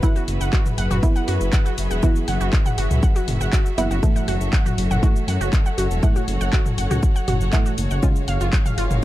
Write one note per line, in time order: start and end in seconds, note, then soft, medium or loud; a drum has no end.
0.00 1.00 E3 medium
0.00 7.99 F#3 medium
0.00 1.00 B3 medium
0.00 1.00 E4 loud
0.00 9.04 F#4 medium
0.00 3.99 G#4 medium
0.00 3.99 B4 medium
0.00 5.99 E5 medium
0.00 0.13 F#5 medium
0.00 kick loud
0.00 shaker medium
0.16 0.22 F#4 medium
0.16 shaker soft
0.28 0.38 F#1 medium
0.28 open hi-hat loud
0.28 shaker soft
0.41 0.50 F#1 medium
0.41 0.51 F#5 medium
0.41 shaker soft
0.53 0.60 F#4 medium
0.53 kick loud
0.53 clap loud
0.53 shaker soft
0.66 mid tom medium
0.66 shaker soft
0.78 0.88 F#1 medium
0.78 0.88 F#5 medium
0.78 open hi-hat loud
0.78 shaker soft
0.91 1.00 F#1 medium
0.91 0.97 F#4 medium
0.91 mid tom medium
0.91 shaker soft
1.03 2.00 E3 medium
1.03 2.00 B3 medium
1.03 2.00 E4 medium
1.03 kick loud
1.03 shaker medium
1.16 1.26 F#5 medium
1.16 shaker soft
1.28 1.38 F#2 loud
1.28 1.35 F#4 medium
1.28 open hi-hat loud
1.28 shaker soft
1.41 1.50 F#1 medium
1.41 shaker soft
1.53 1.63 F#5 medium
1.53 kick loud
1.53 clap loud
1.53 shaker medium
1.66 1.72 F#4 medium
1.66 shaker soft
1.78 1.88 F#1 loud
1.78 open hi-hat loud
1.78 shaker medium
1.91 2.00 E1 medium
1.91 2.01 F#5 medium
1.91 shaker soft
2.03 3.50 E3 medium
2.03 3.50 B3 medium
2.03 3.50 E4 medium
2.03 2.10 F#4 medium
2.03 kick loud
2.03 shaker medium
2.16 shaker soft
2.28 2.38 F#1 medium
2.28 2.38 F#5 medium
2.28 open hi-hat loud
2.28 shaker soft
2.41 2.50 F#1 medium
2.41 2.47 F#4 medium
2.41 shaker soft
2.53 kick loud
2.53 clap loud
2.53 shaker soft
2.66 2.76 F#5 medium
2.66 mid tom medium
2.66 shaker soft
2.78 2.88 F#1 loud
2.78 2.85 F#4 medium
2.78 open hi-hat loud
2.78 shaker soft
2.91 3.00 C#2 medium
2.91 mid tom medium
2.91 shaker soft
3.03 3.13 F#5 medium
3.03 kick loud
3.03 shaker medium
3.16 3.22 F#4 medium
3.16 shaker soft
3.28 3.38 F#1 medium
3.28 mid tom loud
3.28 open hi-hat loud
3.28 shaker soft
3.41 3.50 F#1 medium
3.41 3.51 F#5 medium
3.41 shaker soft
3.53 3.60 F#4 medium
3.53 kick loud
3.53 clap loud
3.53 shaker medium
3.66 shaker soft
3.78 3.88 F#1 loud
3.78 4.00 E3 medium
3.78 4.00 B3 medium
3.78 4.00 E4 medium
3.78 3.88 F#5 medium
3.78 open hi-hat loud
3.78 shaker soft
3.91 4.00 F#1 medium
3.91 3.97 F#4 medium
3.91 shaker soft
4.03 5.00 A2 medium
4.03 5.00 E3 medium
4.03 5.00 A3 loud
4.03 7.99 A4 medium
4.03 9.04 C#5 medium
4.03 kick loud
4.03 shaker medium
4.16 4.26 F#5 medium
4.16 shaker soft
4.28 4.38 F#1 medium
4.28 4.35 F#4 medium
4.28 open hi-hat loud
4.28 shaker soft
4.41 4.50 F#1 medium
4.41 shaker soft
4.53 4.63 F#5 medium
4.53 kick loud
4.53 clap loud
4.53 shaker soft
4.66 4.72 F#4 medium
4.66 mid tom loud
4.66 shaker soft
4.78 4.88 F#1 medium
4.78 open hi-hat loud
4.78 shaker soft
4.91 5.00 F#1 medium
4.91 5.01 F#5 medium
4.91 mid tom loud
4.91 shaker soft
5.03 6.00 A2 medium
5.03 6.00 E3 medium
5.03 6.00 A3 medium
5.03 5.10 F#4 medium
5.03 kick loud
5.03 shaker medium
5.16 shaker soft
5.28 5.38 F#2 loud
5.28 5.38 F#5 medium
5.28 open hi-hat loud
5.28 shaker soft
5.41 5.50 F#1 medium
5.41 5.47 F#4 medium
5.41 shaker soft
5.53 kick loud
5.53 clap loud
5.53 shaker medium
5.66 5.76 F#5 medium
5.66 shaker soft
5.78 5.88 F#1 loud
5.78 5.85 F#4 medium
5.78 open hi-hat loud
5.78 shaker medium
5.91 6.00 E1 medium
5.91 shaker soft
6.03 7.50 A2 medium
6.03 7.50 E3 medium
6.03 7.50 A3 loud
6.03 8.01 F#5 medium
6.03 6.13 F#5 medium
6.03 kick loud
6.03 shaker medium
6.16 6.22 F#4 medium
6.16 shaker soft
6.28 6.38 F#1 loud
6.28 open hi-hat loud
6.28 shaker soft
6.41 6.50 F#1 medium
6.41 6.51 F#5 medium
6.41 shaker soft
6.53 6.60 F#4 medium
6.53 kick loud
6.53 clap loud
6.53 shaker soft
6.66 mid tom loud
6.66 shaker soft
6.78 6.88 F#1 medium
6.78 6.88 F#5 medium
6.78 open hi-hat loud
6.78 shaker soft
6.91 7.00 C#2 medium
6.91 6.97 F#4 medium
6.91 mid tom loud
6.91 shaker soft
7.03 kick loud
7.03 shaker medium
7.16 7.26 F#5 medium
7.16 shaker soft
7.28 7.38 F#1 medium
7.28 7.35 F#4 medium
7.28 mid tom loud
7.28 open hi-hat loud
7.28 shaker soft
7.41 7.50 F#1 medium
7.41 shaker soft
7.53 8.00 A2 loud
7.53 8.00 E3 medium
7.53 8.00 A3 loud
7.53 7.63 F#5 medium
7.53 kick loud
7.53 clap loud
7.53 shaker medium
7.66 7.72 F#4 medium
7.66 shaker soft
7.78 7.88 F#1 loud
7.78 open hi-hat loud
7.78 shaker medium
7.91 8.00 F#1 medium
7.91 8.01 F#5 medium
7.91 shaker soft
8.03 9.00 C#3 medium
8.03 9.04 F#3 medium
8.03 9.00 G#3 medium
8.03 9.00 C#4 loud
8.03 8.10 F4 medium
8.03 9.04 G#4 medium
8.03 9.04 F5 medium
8.03 kick loud
8.03 shaker medium
8.16 shaker soft
8.28 8.38 F#1 medium
8.28 8.38 F5 medium
8.28 open hi-hat loud
8.28 shaker soft
8.41 8.50 F#1 medium
8.41 8.47 F4 medium
8.41 shaker soft
8.53 kick loud
8.53 clap loud
8.53 shaker soft
8.66 8.76 F5 medium
8.66 mid tom medium
8.66 shaker soft
8.78 8.88 F#1 loud
8.78 8.85 F4 medium
8.78 open hi-hat loud
8.78 shaker soft
8.91 9.00 F#1 medium
8.91 mid tom loud
8.91 shaker soft